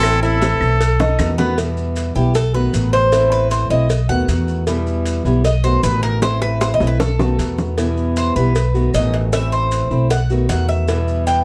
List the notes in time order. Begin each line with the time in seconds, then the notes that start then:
Already playing: A1 C4 E4 A4
0.03 E3 A3 C4 E4, cowbell, claves, maracas
0.22 A3 C4 E4 A4, maracas
0.41 E3 A3 C4 E4 A4, cowbell, high bongo, maracas
0.61 B1, claves, maracas
0.80 muted steel-string acoustic guitar stroke, cowbell, maracas
1.00 D#4, low bongo, maracas
1.19 E2 D#3 A3 B3 F#4, cowbell, low bongo, claves, maracas
1.38 D#3 A3 B3 F#4, low bongo, maracas
1.57 B2 E3 G3 B3 E4, cowbell, maracas
1.77 maracas
1.96 cowbell, maracas
2.15 B1 E3 G3 B3 E4 G4, maracas
2.35 A4, muted steel-string acoustic guitar stroke, cowbell, maracas
2.54 D#3 A3 B3 F#4 B4, maracas
2.73 A1 D#3 A3 B3 F#4, cowbell, maracas
2.93 C5, cowbell, maracas
3.12 E3 A3 C4 E4, cowbell, maracas
3.32 B4, maracas
3.51 C5, cowbell, maracas
3.70 B1 A3 C4 E4 D#5, maracas
3.90 muted steel-string acoustic guitar stroke, cowbell, maracas
4.09 D#2 D#3 A3 B3 F#4 F#5, maracas
4.28 E2 D#3 A3 B3 F#4, cowbell, maracas
4.48 maracas
4.67 B2 E3 G3 B3 E4, cowbell, maracas
4.87 maracas
5.06 cowbell, maracas
5.25 B1 E3 G3 B3 E4, maracas
5.45 D#5, muted steel-string acoustic guitar stroke, cowbell, maracas
5.64 D#3 A3 B3 F#4 C5, maracas
5.83 A1 D#3 A3 B3 F#4 B4, cowbell, maracas
6.03 A#4, cowbell, maracas
6.22 E3 A3 C4 E4 C5, cowbell, high bongo, maracas
6.42 B4, high bongo, maracas
6.61 C5, cowbell, high bongo, maracas
6.74 D#5
6.80 B1 A3 C4 E4, high bongo, maracas
6.87 B4
7.00 A4, muted steel-string acoustic guitar stroke, cowbell, low bongo, maracas
7.19 D#3 A3 B3 F#4, low bongo, maracas
7.39 E2 D#3 A3 B3 F#4, cowbell, maracas
7.58 low bongo, maracas
7.77 B2 E3 G3 B3 E4, cowbell, maracas
7.97 maracas
8.16 C5, cowbell, maracas
8.36 B1 E3 G3 B3 E4 B4, maracas
8.55 muted steel-string acoustic guitar stroke, cowbell, maracas
8.74 D#3 A3 B3 F#4, maracas
8.94 A1 D#3 A3 B3 F#4 D#5, cowbell, maracas
9.13 cowbell, maracas
9.32 E3 A3 C4 E4 E5, cowbell, maracas
9.52 C5, maracas
9.71 cowbell, maracas
9.91 B1 A3 C4 E4, maracas
10.10 F#5, muted steel-string acoustic guitar stroke, cowbell, maracas
10.30 D#3 A3 B3 F#4, maracas
10.49 E2 D#3 A3 B3 F#4 F#5, cowbell, maracas
10.69 E5, maracas
10.88 B2 E3 G3 B3 E4, cowbell, maracas
11.08 maracas
11.27 G5, cowbell, maracas